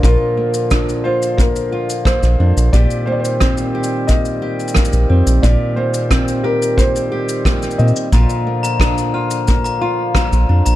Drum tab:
SH |x-----x-x-x---x-x-x---x-x-x---x-|x-x---x-x-x--x--x-x---xxxxx---x-|x-----x-x-x---x-x-x---x-x-xxxxx-|x-x---x-x-x---x-x-x-----x-x---x-|
SD |--------r---------------r-r-----|--------r---------------r-------|--------r---------------r-r-----|--------r---------------r-------|
BD |o-------o-------o-------o-------|o-------o-------o-------o-------|o-------o-------o-------o-------|o-------o-------o-------o-------|